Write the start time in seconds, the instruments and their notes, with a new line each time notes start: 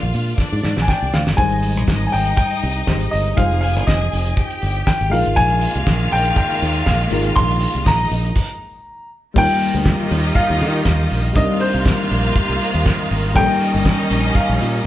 Already playing: tine electric piano G#3 D4 F4 A#4, violin section F4 F5
0.03 fingered electric bass A#1
0.13 fingered electric bass A#2, open hi-hat
0.38 violin section D4 D5, kick, snare
0.52 fingered electric bass G#2
0.63 fingered electric bass G#2, snare
0.77 fingered electric bass A#1, snare
0.82 grand piano G#5
0.88 grand piano G5, kick, snare
1.02 fingered electric bass C2
1.14 fingered electric bass D2, grand piano F5, snare
1.27 fingered electric bass G1, snare
1.36 fingered electric bass G#1, tine electric piano G3 G#3 D#4 C5, violin section D#4 D#5, grand piano G#5, kick, closed hi-hat
1.52 closed hi-hat
1.63 open hi-hat
1.77 fingered electric bass A#1, closed hi-hat
1.88 fingered electric bass G#1, kick, snare
1.99 closed hi-hat
2.07 grand piano G#5
2.12 fingered electric bass G#1, grand piano G5, open hi-hat
2.26 closed hi-hat
2.36 grand piano G5, kick, closed hi-hat
2.51 closed hi-hat
2.63 fingered electric bass C2, open hi-hat
2.77 closed hi-hat
2.87 fingered electric bass G#1, tine electric piano G#3 D#4 G4 C5, kick, snare
3.01 closed hi-hat
3.11 fingered electric bass G1, grand piano D#5, open hi-hat
3.26 closed hi-hat
3.36 fingered electric bass F1, tine electric piano G3 D#4 F4 C5, violin section G#4 G#5, grand piano F5, kick, closed hi-hat
3.42 tine electric piano G#3
3.51 closed hi-hat
3.61 grand piano F5, open hi-hat
3.76 fingered electric bass G1, closed hi-hat
3.87 fingered electric bass F1, grand piano D#5, kick, snare
4.00 closed hi-hat
4.13 fingered electric bass F1, open hi-hat
4.27 closed hi-hat
4.37 violin section G4 G5, kick, closed hi-hat
4.51 closed hi-hat
4.62 fingered electric bass G1, open hi-hat
4.76 closed hi-hat
4.87 grand piano G5, kick, snare
5.01 fingered electric bass G#1, closed hi-hat
5.10 fingered electric bass A#1, tine electric piano G#3 D#4 F4 A#4, violin section F4 F5, grand piano F5, open hi-hat
5.26 fingered electric bass G#1, closed hi-hat
5.36 fingered electric bass A#1, string section D#3 G#3 A#3, grand piano G#5, kick, closed hi-hat
5.50 closed hi-hat
5.61 open hi-hat
5.75 fingered electric bass C2, closed hi-hat
5.87 fingered electric bass A#1, kick, snare
5.98 closed hi-hat
6.11 fingered electric bass A#1, grand piano G5, open hi-hat
6.25 closed hi-hat
6.36 grand piano G5, kick, closed hi-hat
6.49 closed hi-hat
6.61 fingered electric bass D#2, open hi-hat
6.76 closed hi-hat
6.86 fingered electric bass A#1, grand piano F5, kick, snare
7.00 closed hi-hat
7.10 fingered electric bass G#1, tine electric piano G#3 D#4 F4 A#4, open hi-hat
7.24 closed hi-hat
7.36 fingered electric bass A#1, grand piano C6, kick, closed hi-hat
7.49 closed hi-hat
7.60 open hi-hat
7.75 fingered electric bass C2, closed hi-hat
7.86 fingered electric bass A#1, violin section D#4 D#5, grand piano A#5, kick, snare
7.98 closed hi-hat
8.11 fingered electric bass A#1, open hi-hat
8.25 closed hi-hat
8.35 kick, crash
9.34 fingered electric bass D#2, string section D#3 F4 G4, tine electric piano G3 A#3 D#4 F4 A#4, violin section D#4 D#5, grand piano G5, kick, crash
9.60 open hi-hat
9.75 fingered electric bass D2
9.86 kick, snare, closed hi-hat
10.11 fingered electric bass D#2, open hi-hat
10.35 grand piano F5, kick, closed hi-hat
10.50 fingered electric bass D#2
10.60 fingered electric bass D#3, open hi-hat
10.85 fingered electric bass D#2, kick, snare, closed hi-hat
11.10 fingered electric bass A#1, open hi-hat
11.34 fingered electric bass C2, string section C3 D#3 A#3, tine electric piano G3 C4 D4 D#4 A#4, violin section F4 F5, grand piano D#5, kick, closed hi-hat
11.60 grand piano C5, open hi-hat
11.74 fingered electric bass C2
11.86 kick, snare, closed hi-hat
12.11 fingered electric bass A#1, open hi-hat
12.36 kick, closed hi-hat
12.49 fingered electric bass C2
12.61 open hi-hat
12.74 fingered electric bass D#2
12.86 kick, snare, closed hi-hat
13.11 fingered electric bass G#1, open hi-hat
13.34 fingered electric bass A#1, tine electric piano G3 A#3 C#4 D#4 A4, string section G3 C#4, violin section D#4 D#5, grand piano G5, kick, closed hi-hat
13.43 tine electric piano A#4
13.60 open hi-hat
13.74 fingered electric bass G1
13.85 kick, snare, closed hi-hat
14.11 fingered electric bass A#1, open hi-hat
14.35 grand piano F5, kick, closed hi-hat
14.49 fingered electric bass A#1
14.60 fingered electric bass A#2, open hi-hat